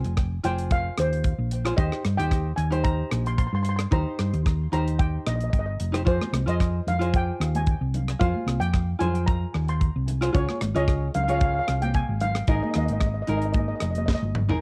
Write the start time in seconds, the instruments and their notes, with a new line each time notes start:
Already playing: ukulele F4 G#4 C5, steel pan G5
0.04 fingered electric bass F1, closed hi-hat
0.17 kick, cross-stick, closed hi-hat
0.43 fingered electric bass F1, ukulele F4 G#4 C5, steel pan G5, closed hi-hat
0.58 closed hi-hat
0.71 steel pan F5, kick, closed hi-hat
0.97 fingered electric bass D#2, steel pan C5, cross-stick, closed hi-hat
1.13 closed hi-hat
1.24 kick, closed hi-hat
1.38 fingered electric bass A#1
1.51 closed hi-hat
1.65 ukulele F4 G#4 C5, cross-stick, closed hi-hat
1.76 fingered electric bass D#2, ukulele D#4 G4 C5, steel pan D#5, kick, closed hi-hat
1.92 cross-stick
2.05 fingered electric bass G2, cross-stick, closed hi-hat
2.17 fingered electric bass D#2, ukulele D#4 G4 C5, steel pan G5, closed hi-hat
2.31 kick, cross-stick, closed hi-hat
2.56 fingered electric bass D#2, steel pan G#5, closed hi-hat
2.71 ukulele D#4 G4 C5, closed hi-hat
2.84 steel pan A#5, kick, closed hi-hat
3.12 fingered electric bass A#1, cross-stick, closed hi-hat
3.26 steel pan C6, closed hi-hat
3.38 steel pan C6, kick, closed hi-hat
3.47 steel pan C6
3.53 fingered electric bass G2, steel pan C6
3.63 steel pan C6, closed hi-hat
3.69 steel pan C6
3.76 steel pan C6, cross-stick, closed hi-hat
3.91 fingered electric bass D#2, ukulele D#4 G4 C5, steel pan A#5, kick, closed hi-hat
4.19 fingered electric bass G2, cross-stick, closed hi-hat
4.33 fingered electric bass D#2, closed hi-hat
4.46 kick, cross-stick, closed hi-hat
4.72 fingered electric bass D#2, ukulele D#4 G4 C5, steel pan A#5, closed hi-hat
4.88 closed hi-hat
4.99 steel pan G5, kick, closed hi-hat
5.27 fingered electric bass A#1, steel pan D#5, cross-stick, closed hi-hat
5.36 steel pan D#5
5.40 steel pan D#5, closed hi-hat
5.50 fingered electric bass G1, steel pan D#5, kick, closed hi-hat
5.59 steel pan D#5
5.66 steel pan D#5
5.80 fingered electric bass F1, closed hi-hat
5.92 ukulele D#4 G4 C5, cross-stick, closed hi-hat
6.05 fingered electric bass F2, ukulele F4 G#4 C5, steel pan C5, kick, closed hi-hat
6.22 cross-stick, high conga
6.33 fingered electric bass C2, cross-stick, closed hi-hat, high conga
6.46 fingered electric bass F2, ukulele F4 G#4 C5, steel pan D#5, closed hi-hat
6.60 kick, cross-stick, closed hi-hat
6.87 fingered electric bass F2, steel pan F5, closed hi-hat, low conga
6.99 ukulele F4 G#4 C5, closed hi-hat
7.14 steel pan G5, kick, closed hi-hat
7.40 fingered electric bass D#2, cross-stick, closed hi-hat
7.55 steel pan G#5, closed hi-hat, high conga
7.66 kick, closed hi-hat
7.81 fingered electric bass C2
7.94 closed hi-hat, low conga
8.08 cross-stick, closed hi-hat
8.19 fingered electric bass F2, ukulele F4 G#4 C5, steel pan F5, kick, closed hi-hat
8.35 high conga
8.46 fingered electric bass C2, cross-stick, closed hi-hat, high conga
8.60 fingered electric bass F2, steel pan G5, closed hi-hat
8.73 kick, cross-stick, closed hi-hat
8.99 fingered electric bass F2, ukulele F4 G#4 C5, steel pan G#5, closed hi-hat, low conga
9.15 closed hi-hat
9.26 steel pan A#5, kick, closed hi-hat
9.54 fingered electric bass D#2, cross-stick, closed hi-hat
9.68 steel pan C6, closed hi-hat
9.81 kick, closed hi-hat
9.96 fingered electric bass C2
10.08 closed hi-hat, low conga
10.21 ukulele F4 G#4 C5, cross-stick, closed hi-hat
10.32 fingered electric bass C#2, ukulele F4 G#4 C#5, steel pan C#5, kick, closed hi-hat
10.49 cross-stick, high conga
10.61 fingered electric bass G#1, cross-stick, closed hi-hat, high conga
10.74 fingered electric bass C#2, ukulele F4 G#4 C#5, steel pan D#5, closed hi-hat
10.88 kick, cross-stick, closed hi-hat
11.14 fingered electric bass C#2, steel pan F5, closed hi-hat, low conga
11.24 steel pan F5
11.28 ukulele F4 G#4 C#5, steel pan F5, closed hi-hat
11.39 steel pan F5, kick, closed hi-hat
11.45 steel pan F5
11.54 steel pan F5
11.59 steel pan F5
11.68 fingered electric bass C2, steel pan F5, cross-stick, closed hi-hat
11.82 steel pan G5, closed hi-hat, high conga
11.94 steel pan G#5, kick, closed hi-hat
12.09 fingered electric bass G#1
12.21 steel pan F5, closed hi-hat, low conga
12.35 cross-stick, closed hi-hat
12.47 fingered electric bass G#1, ukulele D#4 G#4 A#4, steel pan D#5, kick, closed hi-hat
12.55 steel pan D#5
12.63 steel pan D#5, high conga
12.71 steel pan D#5, cross-stick, closed hi-hat
12.76 fingered electric bass D#2, steel pan D#5, high conga
12.86 fingered electric bass G#1, steel pan D#5, closed hi-hat
12.93 steel pan D#5
13.00 steel pan D#5, kick, cross-stick, closed hi-hat
13.07 steel pan D#5
13.14 steel pan D#5
13.22 steel pan D#5
13.27 fingered electric bass G#1, ukulele D#4 G#4 A#4, steel pan D#5, closed hi-hat, low conga
13.37 steel pan D#5
13.42 steel pan D#5, closed hi-hat
13.53 steel pan D#5, kick, closed hi-hat, high conga
13.60 steel pan D#5
13.68 steel pan D#5
13.76 steel pan D#5
13.80 fingered electric bass F1, steel pan D#5, cross-stick, closed hi-hat
13.91 steel pan D#5
13.95 steel pan D#5, closed hi-hat, high conga
14.06 steel pan D#5, kick, snare, high conga
14.15 steel pan D#5
14.22 fingered electric bass G1, high conga
14.35 mid tom, low conga
14.49 ukulele D#4 G#4 A#4, floor tom, low conga